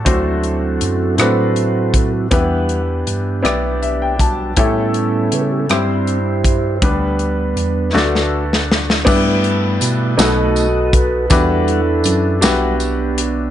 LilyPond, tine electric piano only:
\new Staff \with { instrumentName = "Tine electric piano" } { \clef bass \time 6/8 \key g \major \tempo 4. = 53 d,4 fis,8 a,4. | e,4 g,8 b,,4. | a,4 cis8 g,4. | d,4 e,8 d,4. |
g,4 b,8 b,,4. | e,4 fis,8 b,,4. | }